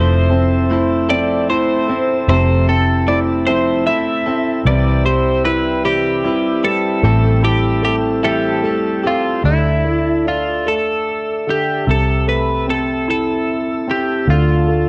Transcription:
Already playing: F1 F3 A3 C4 E4 A4 C5 E5 A5 E6
0.30 C4 E4 A4
0.70 A3 C4 E4 A4
1.09 F3 A3 C4 E4 A4 D5
1.48 A3 C4 E4 A4 C5
1.88 C4 E4 A4
2.28 F1 C3 F3 A3 C4 E4 A4 C5
2.68 C4 E4 A4
3.07 A3 C4 E4 A4 D5
3.47 F3 A3 C4 E4 A4 C5
3.87 A3 C4 E4 A4 E5
4.26 C4 E4 A4
4.65 C2 C3 E3 G3 C4 E4 B4 D5 G5 B5
5.05 G3 C4 E4 C5
5.45 G3 C4 E4 B4
5.84 C3 E3 G3 C4 E4 G4 B4
6.24 G3 C4 E4 B4
6.63 G3 C4 E4 A4 B4
7.03 A1 A2 E3 G3 A3 C4 E4 A4 G5 A5 E6
7.43 G3 C4 E4 G4 A4
7.83 G3 A3 C4 E4 G4 A4
8.23 A2 E3 G3 C4 E4 G4 A4 E5
8.63 G3 A3 C4 E4 A4
9.04 G3 C4 F4 G4 A4
9.44 D2 D3 E4 D5 E5 A5 E6
9.85 A3
10.26 D4 F4
10.66 A3 A4
11.47 D3 G4
11.87 C2 C3 C4 A4 E5 E6
12.27 A3 B4
12.68 C4 A4
13.08 E4 A4
13.88 C4 G4
14.28 D2 D3 F4 D5 F5
14.68 A3

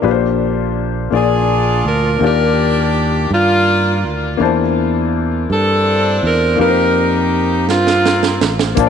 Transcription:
0.02 A#1 A#2 A#3 D4 F4 G4 B4
0.11 C5
1.10 A#1 A#2 A#3 D4 F4 G#4 D5
1.85 D2 A#4
2.19 D#2 D#3 A#3 D4 F4 G4
2.23 G4 A#4 D5
3.30 G2 A#3 D4 F4
4.04 D2
4.37 E2 E3 A#3 D4 E4
4.42 C5 A5
5.50 G2 C4 D4 A4
6.23 E2 A#4
6.56 F2 A#3 D#4 F4
6.60 D#4 G4 A#4 B4
6.68 C5
7.68 G2 A#3 C4 F4, snare
7.87 snare
8.06 snare
8.23 snare
8.41 A1, snare
8.59 snare
8.75 A#1 A#2 A#3 D4 F4, kick, closed hi-hat
8.79 C5 A5

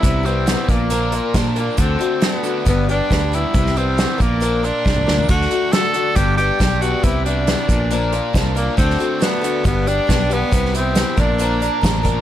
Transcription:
Already playing: E4
0.03 C2 C3 G3 B3 E4 G4, kick, closed hi-hat
0.23 G3 B3 C4 E4 G4, closed hi-hat
0.46 G3 B3 E4 G4, snare, closed hi-hat
0.68 A#1 A#2 F3 A#3 D4 A#4, kick, closed hi-hat
0.90 A#2 D3 F3 A#3 D4 A#4, closed hi-hat
1.12 F3 A#3 D4 F4 A#4, closed hi-hat
1.34 A#2 F3 A#3 D4 A#4, kick, snare, closed hi-hat
1.56 F3 A#3 D4 A#4, closed hi-hat
1.77 D2 D3 A3 D4 F#4 A4, kick, closed hi-hat
1.81 C4
1.99 A3 D4 F#4 A4, closed hi-hat
2.20 A3 D4 F#4 A4, snare, closed hi-hat
2.26 B3
2.43 D3 D4 F#4 A4, closed hi-hat
2.65 G1 G2 D3 G3 B3 D4 G4, kick, closed hi-hat
2.88 G3 B3 D4 G4, closed hi-hat
3.10 D2 G3 B3 D4 G4, kick, snare, closed hi-hat
3.32 G3 B3 D4 E4 G4, closed hi-hat
3.54 C2 C3 G3 B3 E4 G4, kick, closed hi-hat
3.66 snare
3.76 G3 B3 C4 E4 G4, closed hi-hat
3.97 G3 B3 E4 G4, snare, closed hi-hat
4.18 A#1 A#2 F3 A#3 D4 A#4, kick, closed hi-hat
4.40 A#2 D3 F3 A#3 D4 A#4, closed hi-hat
4.63 F3 A#3 D4 F4 A#4, closed hi-hat
4.85 C2 F3 A#3 D4 A#4, kick, snare
4.97 mid tom
5.06 D2 F3 A#3 D4 A#4, snare
5.18 floor tom
5.29 D2 D3 A3 D4 F#4 A4, kick, closed hi-hat
5.41 snare
5.50 A3 D4 F#4 A4, closed hi-hat
5.71 A3 D4 F#4 A4, snare, closed hi-hat
5.93 D3 D4 F#4 A4, closed hi-hat
6.15 G1 G2 D3 G3 B3 D4 G4, kick, closed hi-hat
6.37 G3 B3 D4 G4, closed hi-hat
6.59 B1 G3 B3 D4 G4, kick, snare, closed hi-hat
6.81 G3 B3 D4 F#4 G4, closed hi-hat
7.03 C2 C3 G3 B3 E4 G4, kick, closed hi-hat
7.25 G3 B3 D4 E4 G4, closed hi-hat
7.47 G3 B3 E4 G4, snare, closed hi-hat
7.68 A#1 A#2 F3 A#3 D4 A#4, kick, closed hi-hat
7.91 A#2 D3 F3 A#3 D4 A#4, closed hi-hat
8.12 F3 A#3 D4 F4 A#4, closed hi-hat
8.33 C2 F3 A#3 D4 A#4, kick, snare, closed hi-hat
8.55 F3 A#3 D4 A#4, closed hi-hat
8.77 D2 D3 A3 C4 D4 F#4 A4, kick, closed hi-hat
8.90 snare
8.98 A3 D4 F#4 A4, closed hi-hat
9.19 A3 D4 F#4 A4, snare, closed hi-hat
9.23 B3
9.41 D3 D4 F#4 A4, closed hi-hat
9.64 G1 G2 D3 G3 B3 D4 G4, kick, closed hi-hat
9.86 G3 B3 D4 G4, closed hi-hat
10.07 B1 G3 B3 D4 G4, kick, snare, closed hi-hat
10.30 G3 B3 D4 G4, closed hi-hat
10.51 C2 C3 G3 B3 E4 G4, kick, closed hi-hat
10.65 snare
10.74 B3 C4 E4 G4, closed hi-hat
10.95 G3 B3 E4 G4, snare, closed hi-hat
11.17 A#1 A#2 F3 A#3 D4 A#4, kick, closed hi-hat
11.38 A#2 D3 F3 A#3 D4 A#4, closed hi-hat
11.60 F3 A#3 D4 A#4, closed hi-hat
11.81 A1 F3 A#3 D4 A#4, kick, snare, closed hi-hat
12.03 F3 A#3 D4 A#4, kick, closed hi-hat

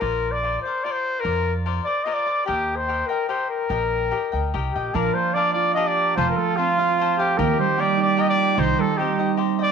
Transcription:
0.00 A#1 F4 A#4 C5 D5
0.31 D5
0.43 F4 A#4 C5 D5
0.62 C5 D5
0.67 A#4 C5
0.84 F4 A#4 C5 D5
0.92 C5
1.20 F4 A#4
1.24 F2 A#4 C5 D5
1.66 F4 A#4 C5 D5
1.85 A#4 C5 D5
2.04 F4 A#4 C5 D5 D#5
2.13 D5
2.26 A#4 C5 D5
2.46 D#2 G4 A#4 D#5 G5
2.76 C5
2.88 G4 A#4 D#5 G5
3.07 A#4 D#5 G5
3.11 A#4
3.29 G4 A#4 C5 D#5 G5
3.50 A#4
3.69 A#1 G4 A#4 D#5 G5
4.11 G4 A#4 D#5 G5
4.32 D2 A#4 D#5 G5
4.54 C2 G4 A#4 D#5 G5
4.73 A#1 G4 A#4 D#5 G5
4.94 A#1 F3 D4 F4 A#4 D5 F5
5.14 A#3 C5
5.34 D4 A#4 D5 F5
5.38 D5
5.53 F4 D5
5.74 D4 G4 A#4 D5 D#5 F5
5.87 D5
5.97 A#5
6.16 F1 F3 F4 A4 C5 F5
6.29 A#4
6.36 A3 A4
6.57 C4 F4 A4 C5 F5
6.78 F4 A4 C5 F5
6.98 F4 A4 C5 F5
7.18 G4 A4 C5 F5 A5
7.37 D#2 D#3 G4 A#4 D#5 G5
7.59 G3 C5
7.77 A#3 G4 A#4 D5 D#5 G5
7.97 D#4
8.02 D5
8.17 G4 A#4 D#5 G5
8.29 D5
8.39 G5
8.57 C2 D#3 D#4 G4 C5 D#5
8.79 G3 A4
8.98 C4 D#4 G4 C5 D#5
9.19 D#4 G4 C5 D#5
9.37 D#4 G4 C5 D#5
9.59 G4 C5 D5 D#5 G5

